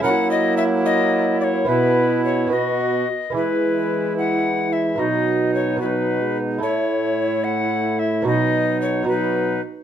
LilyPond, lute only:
<<
  \new Staff \with { instrumentName = "Lute" } { \time 6/8 \key e \major \tempo 4. = 73 <cis' e' ais'>2. | <b e' b'>4. <b fis' b'>4. | <b e' gis'>2. | <b dis' fis'>4. <b dis' fis'>4. |
<e' a'>2. | <b dis' fis'>4. <b dis' fis'>4. | }
  \new Staff \with { instrumentName = "Lute" } { \clef bass \time 6/8 \key e \major fis2. | b,2~ b,8 r8 | e2. | b,2. |
a,2. | b,2~ b,8 r8 | }
>>